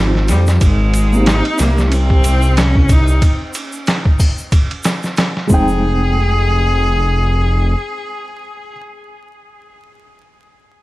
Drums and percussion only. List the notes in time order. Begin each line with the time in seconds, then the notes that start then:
0.15 snare
0.28 snare, ride, shaker
0.47 snare, shaker
0.61 kick, ride, shaker
0.94 ride, shaker
1.13 shaker
1.26 snare, ride, shaker
1.45 ride
1.58 snare, ride, shaker
1.78 snare, shaker
1.92 ride, shaker
2.10 kick
2.24 ride, shaker
2.42 shaker
2.57 snare, ride, shaker
2.75 kick
2.89 kick, ride, shaker
3.08 shaker
3.22 kick, ride, shaker
3.54 ride, shaker
3.73 shaker
3.87 snare, ride, shaker
4.05 kick
4.20 kick, open hi-hat, shaker
4.38 shaker
4.52 kick, ride, shaker
4.71 ride
4.84 snare, ride, shaker
5.03 snare, shaker
5.17 snare, ride, shaker
5.37 snare
5.49 kick, shaker
5.68 shaker